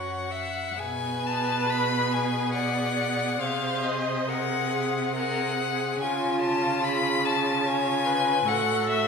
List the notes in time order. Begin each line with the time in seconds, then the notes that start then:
Already playing: F#2 F#4 C#5 F#5
0.31 E5
0.79 B2 G#4 B4 G#5
1.26 A5
1.68 G#4 B5
2.13 G#5
2.54 D5 F#5
3.40 C3 G#4 C5 F5
3.84 D#5
4.28 G#4 A#4 F#5
4.72 G#4
5.15 G#4 A#4 F#5
5.58 G#4
6.01 C#3 F4 G#5
6.42 A5
6.84 G#4 B5
7.25 A5
7.65 F4 C#5 G#5
8.06 B4
8.46 A2 F#4 A4 F#5
8.90 E5